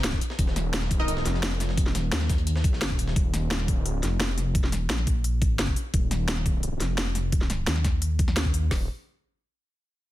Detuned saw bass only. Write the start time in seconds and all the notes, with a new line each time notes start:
Already playing: A#1
0.39 D#1
1.26 F1
1.86 E1
2.12 D#2
2.99 D#1
3.16 D#1
3.76 D1
4.03 F1
4.63 E1
4.90 A#1
5.94 D#1
6.80 F1
7.67 D#2
8.71 D#1